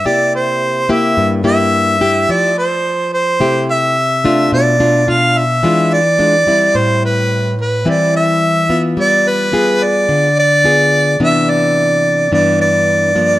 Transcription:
<<
  \new Staff \with { instrumentName = "Harmonica" } { \time 4/4 \key c \major \tempo 4 = 108 d''8 c''4 e''4 e''4. | d''8 c''4 c''4 e''4. | d''4 f''8 e''4 d''4. | c''8 b'4 b'8 d''8 e''4. |
d''8 b'4 d''4 d''4. | e''8 d''4. d''8 d''4. | }
  \new Staff \with { instrumentName = "Nylon-string guitar" } { \time 4/4 \key c \major << { <bes e' g'>4. <bes e' g'>4 <bes e' g'>4 <a e' g'>8~ | <a e' g'>8 r4. <a e' g'>4 r8 <a d' f'>8~ | <a d' f'>8 <a d' f'>8 <a d' f'>8 r8 <gis d' f'>8 r8 <gis d' f'>8 <g c' e'>8~ | <g c' e'>4. r8 <g c' e'>4. <b f'>8~ |
<b f'>4 <b f' aes'>4. r8 <b f' aes'>4 | <e b d'>2 <e b d'>4. <f bes d'>8 | } \\ { c2 g,2 | f2 c2 | b,2 e2 | a,2 e2 |
g2 d2 | c2 g,2 | } >> }
>>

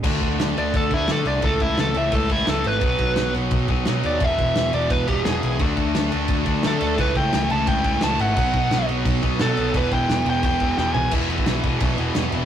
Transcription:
<<
  \new Staff \with { instrumentName = "Overdriven electric guitar" } { \time 4/4 \key e \mixolydian \tempo 4 = 173 r4. d''8 a'8 e'8 a'8 d''8 | a'8 e'8 a'8 e''8 a'8 e'8 a'8 b'8~ | b'4. r2 d''8 | e''4. d''8 b'8 g'8 gis'4 |
r2. a'4 | b'8 g''4 a''8 g''4 a''8 fis''8~ | fis''4. r4. a'4 | b'8 g''4 g''8 g''4 g''8 gis''8 |
r1 | }
  \new Staff \with { instrumentName = "Distorted electric guitar" } { \time 4/4 \key e \mixolydian r1 | r1 | r1 | r1 |
<d fis a d' fis'>4. <d fis a d' fis'>2~ <d fis a d' fis'>8 | <cis e a e'>4. <cis e a e'>2~ <cis e a e'>8 | <b, fis b dis'>4. <b, fis b dis'>2~ <b, fis b dis'>8 | <e gis b e'>4. <e gis b e'>2~ <e gis b e'>8 |
<e gis b e'>1 | }
  \new Staff \with { instrumentName = "Distorted electric guitar" } { \clef bass \time 4/4 \key e \mixolydian <d a d'>2~ <d a d'>8 <d a d'>8 <d a d'>4 | <a, e a>2~ <a, e a>8 <a, e a>8 <a, e a>4 | <b, fis b>2~ <b, fis b>8 <b, fis b>8 <b, fis b>4 | <e, b, e>2~ <e, b, e>8 <e, b, e>8 <e, b, e>4 |
<d a d'>2~ <d a d'>8 <d a d'>8 <d a d'>4 | <a, e a>2~ <a, e a>8 <a, e a>8 <a, e a>4 | <b, fis b>2~ <b, fis b>8 <b, fis b>8 <b, fis b>4 | <e, b, e>2~ <e, b, e>8 <e, b, e>8 <e, b, e>4 |
<e, b, e>8 <e, b, e>8 <e, b, e>8 <e, b, e>8 <e, b, e>8 <e, b, e>8 <e, b, e>8 <e, b, e>8 | }
  \new Staff \with { instrumentName = "Distorted electric guitar" } { \clef bass \time 4/4 \key e \mixolydian <d a d'>4. <d a d'>4. <d a d'>4 | <a, e a>4. <a, e a>4. <a, e a>4 | <b, fis b>4. <b, fis b>4. <b, fis b>4 | <e, b, e>4. <e, b, e>4. <e, b, e>4 |
<d a d'>4. <d a d'>4. <d a d'>4 | <a, e a>4. <a, e a>4. <a, e a>4 | <b, fis b>4. <b, fis b>4. <b, fis b>4 | <e, b, e>4. <e, b, e>4. <e, b, e>4 |
<e, b, e>8 <e, b, e>8 <e, b, e>8 <e, b, e>8 <e, b, e>8 <e, b, e>8 <e, b, e>8 <e, b, e>8 | }
  \new Staff \with { instrumentName = "Picked electric bass" } { \clef bass \time 4/4 \key e \mixolydian d,8 d,8 d,8 d,8 d,8 d,8 d8 c,8 | cis,8 cis,8 cis,8 cis,8 cis,4 cis,8 gis,,8 | b,,8 b,,8 b,,8 b,,8 b,,8 b,,8 b,8 dis,8 | e,,8 e,,8 e,,8 e,,8 e,,4 e,,8 b,,8 |
d,8 d,8 d,8 d,8 d,8 d,8 d8 d,8 | cis,8 cis,8 cis,8 cis,8 cis,4 cis,8 gis,,8 | b,,8 b,,8 b,,8 b,,8 b,,8 b,,8 b,8 b,,8 | e,,8 e,,8 e,,8 e,,8 e,,4 e,,8 b,,8 |
e,,4 b,,8 e,,8 b,,8 e,,8 e,,8 e,,8 | }
  \new DrumStaff \with { instrumentName = "Drums" } \drummode { \time 4/4 <cymc bd>8 <cymc bd>8 <cymc sn>8 cymc8 <cymc bd>8 <cymc bd>8 <cymc sn>8 cymc8 | <cymc bd>8 <cymc bd>8 <cymc sn>8 cymc8 <cymc bd>8 <cymc bd>8 <cymc sn>8 cymc8 | <cymc bd>8 <cymc bd>8 <cymc sn>8 cymc8 <cymc bd>8 <cymc bd>8 <cymc sn>8 cymc8 | <cymc bd>8 <cymc bd>8 <cymc sn>8 cymc8 <cymc bd>8 <cymc bd>8 <cymc sn>8 cymc8 |
<cymc bd>8 <cymc bd>8 <cymc sn>8 cymc8 <cymc bd>8 <cymc bd>8 <cymc sn>8 cymc8 | <cymc bd>8 <cymc bd>8 <cymc sn>8 cymc8 <cymc bd>8 <cymc bd>8 <cymc sn>8 cymc8 | <cymc bd>8 <cymc bd>8 <cymc sn>8 cymc8 <cymc bd>8 <cymc bd>8 <cymc sn>8 cymc8 | <cymc bd>8 <cymc bd>8 <cymc sn>8 cymc8 <cymc bd>8 <cymc bd>8 sn8 tomfh8 |
<cymc bd>8 cymc16 bd16 <cymc sn>8 <cymc bd>8 <cymc bd>8 cymc8 <cymc sn>8 cymc8 | }
>>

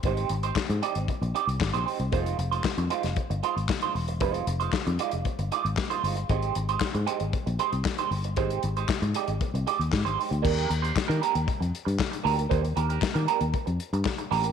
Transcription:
<<
  \new Staff \with { instrumentName = "Clean electric guitar" } { \time 4/4 \key ees \major \tempo 4 = 116 <c' ees' g' c''>8 r16 <c' ees' g' c''>16 r8 <c' ees' g' d''>16 r8. <c' ees' g' d''>16 r8 <c' ees' g' c''>16 <c' ees' g' c''>16 r16 | <aes ees' f' c''>8 r16 <aes ees' f' c''>16 r8 <aes ees' f' c''>16 r8. <aes ees' f' c''>16 r8 <aes ees' f' c''>16 r8 | <aes ees' f' c''>8 r16 <aes ees' f' c''>16 r8 <aes ees' f' d''>16 r8. <aes ees' f' d''>16 r8 <aes ees' f' c''>16 <aes ees' f' c''>16 r16 | <aes ees' g' c''>8 r16 <aes ees' g' c''>16 r8 <aes ees' g' c''>16 r8. <aes ees' g' c''>16 r8 <aes ees' g' c''>16 r8 |
<aes ees' g' c''>8 r16 <aes ees' g' c''>16 r8 <aes ees' g' d''>16 r8. <aes ees' g' d''>16 r8 <aes ees' g' c''>16 <aes ees' g' c''>16 r16 | <bes d' g' bes'>8 r16 <bes d' g' c''>16 r16 <bes d' g' bes'>16 <bes d' g' bes'>16 r4. r16 <bes d' g' bes'>16 r16 | <bes d' g' c''>16 r16 <bes d' g' bes'>16 <bes d' g' bes'>16 r16 <bes d' g' bes'>16 <bes d' g' bes'>16 r4. r16 <bes d' g' bes'>16 r16 | }
  \new Staff \with { instrumentName = "Fingered electric bass" } { \clef bass \time 4/4 \key ees \major aes,,8 aes,,8 r16 aes,16 r16 aes,,16 r16 bes,,16 r16 c,16 aes,,16 bes,,16 r16 c,16 | f,,8 f,,8 r16 f,16 r16 f,,16 r16 g,,16 r16 aes,,16 r8 fes,,8 | f,,8 f,,8 r16 f,16 r16 f,,16 r16 g,,16 r16 aes,,16 r8 g,,8 | aes,,8 aes,,8 r16 aes,16 r16 aes,,16 r16 bes,,16 r16 c,16 r8 g,,8 |
aes,,8 aes,,8 r16 aes,16 r16 aes,,16 r16 c,16 r16 ees,16 aes,16 aes,,16 r16 d,16 | ees,8 ees,8 r16 ees16 r16 ees,16 r16 f,16 r16 g,16 r8 d,8 | ees,8 ees,8 r16 ees16 r16 ees,16 r16 f,16 r16 g,16 r8 a,,8 | }
  \new DrumStaff \with { instrumentName = "Drums" } \drummode { \time 4/4 <hh bd>16 hh16 hh16 hh16 <hc bd sn>16 hh16 hh16 hh16 <hh bd>16 hh16 hh16 hh16 <hc bd sn>16 hh16 hho16 hh16 | <hh bd>16 hh16 hh16 hh16 <hc bd sn>16 hh16 hh16 <hh sn>16 <hh bd>16 hh16 hh16 hh16 <hc bd sn>16 hh16 hho16 hh16 | <hh bd>16 hh16 hh16 hh16 <hc bd sn>16 hh16 hh16 hh16 <hh bd>16 hh16 hh16 hh16 <hc bd sn>16 hh16 hho16 hh16 | <hh bd>16 hh16 hh16 hh16 <hc bd sn>16 hh16 hh16 hh16 <hh bd>16 hh16 hh16 hh16 <hc bd sn>16 hh16 hho16 hh16 |
<hh bd>16 hh16 hh16 hh16 <hc bd sn>16 hh16 hh16 hh16 <hh bd>16 hh16 hh16 hh16 <hc bd sn>16 hh16 hho16 hh16 | <cymc bd>16 hh16 hh16 hh16 <hc bd sn>16 hh16 hh16 hh16 <hh bd>16 hh16 hh16 hh16 <hc bd sn>16 hh16 hho16 hh16 | <hh bd>16 hh16 hh16 hh16 <hc bd sn>16 hh16 hh16 hh16 <hh bd>16 hh16 hh16 hh16 <hc bd sn>16 hh16 hho16 hh16 | }
>>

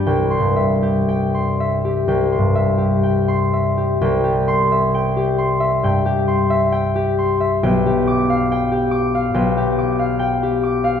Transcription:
<<
  \new Staff \with { instrumentName = "Harp" } { \time 4/4 \key c \major \tempo 4 = 67 << { r16 c'''2.~ c'''8.~ | c'''8 c'''2.~ c'''8 | r8 d'''2.~ d'''8 | } \\ { <g' g''>8 e''16 g'16 g''16 c'''16 e''16 g'16 g''16 c'''16 e''16 g'16 g''16 c'''16 e''16 g'16 | g''16 g'8 e''16 g''16 g'16 c'''16 e''16 g''16 g'16 c'''16 e''16 g''16 g'16 c'''16 e''16 | g''16 g'8 f''16 g''16 g'16 d'''16 f''16 g''16 g'16 d'''16 f''16 g''16 g'16 d'''16 f''16 | } >> }
  \new Staff \with { instrumentName = "Harp" } { \clef bass \time 4/4 \key c \major \tuplet 3/2 { c,8 g,4~ } g,4 \tuplet 3/2 { c,8 g,4~ } g,4 | c,2 g,2 | b,,2 b,,2 | }
>>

